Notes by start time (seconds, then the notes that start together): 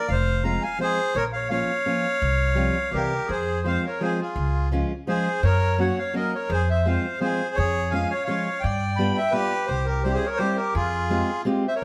0.09 F1 C5 F5
0.44 F3 G#3 C4 F4 F5 A#5
0.62 F5 G#5
0.78 F3 G#3 C4 F4 C5
0.83 G#4
1.15 A#1 A#4 C#5
1.33 C#5 F5
1.50 F3 A#3 C#4 F4 C#5 F5
1.86 F3 A#3 C#4 F4
2.22 C2
2.55 F3 G3 C4 F4
2.91 C2 E3 G3 C4 E4 G4 A#4
2.96 G4
3.26 F2 G#4
3.30 G#4 C5
3.64 F3 G#3 C4 F4 C5 F5
3.68 C5
3.83 A#4 C#5
3.88 A#4
4.00 F3 G#3 C4 F4 G#4 C5
4.17 F4
4.21 F4 G#4
4.36 C#2
4.71 F3 G#3 C#4 F4
5.07 F3 G#3 C#4 F4 G#4 C5
5.43 F#2 A#4 C#5
5.78 F#3 A#3 C#4 F#4 C#5 F#5
5.97 C#5 F5
6.13 F#3 A#3 C#4 F#4 A#4 D#5
6.18 A#4
6.33 A#4 C#5
6.37 A#4
6.49 F2 G#4 C5
6.53 G#4
6.68 C5 E5
6.72 C5
6.82 F3 G#3 C4 C5
6.87 F4 C5 F5
7.20 F3 G#3 C4 F4 G#4 C5
7.24 G#4
7.55 F2 G#4 C#5
7.90 F3 G#3 C#4 F4 F5 G#5
8.10 C#5 F5
8.25 F3 G#3 C#4 C#5 F5
8.29 F4 C#5
8.60 G2 D5 G5
8.65 D5
8.96 G3 B3 D4 G5 B5
9.00 F4
9.14 E5 G5
9.31 G3 B3 D4 F4 G4 B4
9.66 C2 G4 C5
9.70 G4
9.85 G4 A#4
10.02 G3 C4 G4 C5
10.06 E4 G4
10.14 G#4 C5
10.25 A#4 C#5
10.37 G3 C4 E4 G4 C5
10.57 G4 A#4
10.74 F2 F4 G#4
11.10 G#3 C4 F4 G4
11.45 G#3 C4 F4 G4
11.68 C5 E5
11.75 A#4 C#5